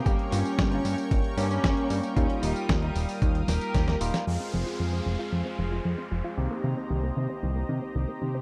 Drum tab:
HH |xxoxxxoxxxoxxxox|xxoxxxooxxoxxxox|----------------|----------------|
TB |x-xxx-xxx-xxx-xx|x-xxx-xxx-xxx-xx|----------------|----------------|
SD |----o-------o---|----o-----o-oo-o|----------------|----------------|
BD |o---o---o---o---|o---o---o---o---|----------------|----------------|